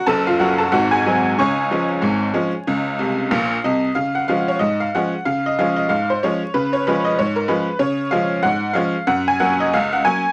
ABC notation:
X:1
M:2/4
L:1/16
Q:"Swing 16ths" 1/4=93
K:Db
V:1 name="Honky-tonk piano"
[=A=a] [Ff] [Gg] [Aa] [Gg] [_A_a]3 | [dad']8- | [dad']4 f2 e2 | f g f d e f g2 |
f e f e f c d2 | _c d c e d B c2 | d2 f2 g2 f2 | g a g e f g a2 |]
V:2 name="Honky-tonk piano" clef=bass
[G,,,G,,]2 [G,D]2 [A,,,A,,]2 [G,A,C]2 | [D,,D,]2 [F,A,D]2 [A,,,A,,]2 [F,A,D]2 | [D,,D,]2 [C,,C,]2 [B,,,B,,]2 [C,,C,]2 | D,2 [F,A,D]2 A,,2 [F,A,D]2 |
D,2 [F,A,D]2 A,,2 [F,A,D]2 | D,2 [F,A,D]2 A,,2 [F,A,D]2 | D,2 [F,A,D]2 A,,2 [F,A,D]2 | G,,2 [G,B,D]2 D,,2 [G,B,D]2 |]